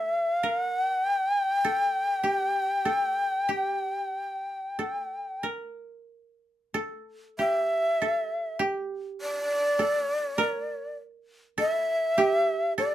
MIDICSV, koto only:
0, 0, Header, 1, 2, 480
1, 0, Start_track
1, 0, Tempo, 1224490
1, 639, Time_signature, 4, 2, 24, 8
1, 1120, Tempo, 1260504
1, 1600, Tempo, 1315789
1, 2560, Tempo, 1255230
1, 3040, Tempo, 1190476
1, 5033, End_track
2, 0, Start_track
2, 0, Title_t, "Koto"
2, 0, Program_c, 0, 107
2, 0, Note_on_c, 0, 67, 56
2, 0, Note_on_c, 0, 69, 54
2, 170, Note_on_c, 0, 70, 51
2, 193, Note_off_c, 0, 69, 0
2, 252, Note_off_c, 0, 67, 0
2, 645, Note_on_c, 0, 69, 56
2, 668, Note_off_c, 0, 70, 0
2, 876, Note_on_c, 0, 67, 47
2, 1117, Note_off_c, 0, 69, 0
2, 1118, Note_on_c, 0, 69, 53
2, 1358, Note_off_c, 0, 67, 0
2, 1360, Note_on_c, 0, 67, 48
2, 1833, Note_off_c, 0, 69, 0
2, 1845, Note_on_c, 0, 69, 45
2, 2080, Note_on_c, 0, 70, 43
2, 2102, Note_off_c, 0, 69, 0
2, 2114, Note_off_c, 0, 67, 0
2, 2557, Note_on_c, 0, 69, 55
2, 2580, Note_off_c, 0, 70, 0
2, 2804, Note_on_c, 0, 67, 46
2, 3043, Note_off_c, 0, 69, 0
2, 3045, Note_on_c, 0, 69, 54
2, 3276, Note_off_c, 0, 67, 0
2, 3277, Note_on_c, 0, 67, 59
2, 3759, Note_off_c, 0, 69, 0
2, 3760, Note_on_c, 0, 69, 58
2, 3998, Note_on_c, 0, 70, 63
2, 4022, Note_off_c, 0, 69, 0
2, 4100, Note_off_c, 0, 67, 0
2, 4480, Note_on_c, 0, 69, 63
2, 4505, Note_off_c, 0, 70, 0
2, 4722, Note_on_c, 0, 67, 63
2, 4963, Note_off_c, 0, 69, 0
2, 4965, Note_on_c, 0, 69, 60
2, 5033, Note_off_c, 0, 67, 0
2, 5033, Note_off_c, 0, 69, 0
2, 5033, End_track
0, 0, End_of_file